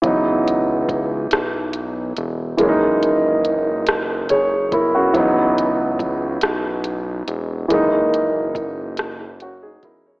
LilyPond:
<<
  \new Staff \with { instrumentName = "Grand piano" } { \time 6/8 \key cis \dorian \tempo 4. = 47 r2. | r2 <gis' cis''>8 <e' ais'>16 <cis' fis'>16~ | <cis' fis'>16 r2 r8. | r2 <cis' fis'>16 <dis' gis'>16 <e' ais'>16 <gis' cis''>16 | }
  \new Staff \with { instrumentName = "Grand piano" } { \time 6/8 \key cis \dorian <e fis b dis'>2. | <e gis ais cis' dis'>2. | <e fis b dis'>2. | <e gis ais dis'>2. | }
  \new Staff \with { instrumentName = "Analog synth bass" } { \clef bass \time 6/8 \key cis \dorian cis,4. b,,4 e,,8 | fis,,2~ fis,,8 b,,8 | cis,4. b,,4 e,,8 | fis,,2~ fis,,8 e,,8 | }
  \new DrumStaff \with { instrumentName = "Drums" } \drummode { \time 6/8 <hh bd>8 hh8 <hh bd>8 <hh ss>8 hh8 hh8 | hh8 hh8 hh8 <hh ss>8 hh8 <hh bd>8 | <hh bd>8 hh8 <hh bd>8 <hh ss>8 hh8 hh8 | hh8 hh8 <hh bd>8 <hh ss>8 hh8 <hh bd>8 | }
>>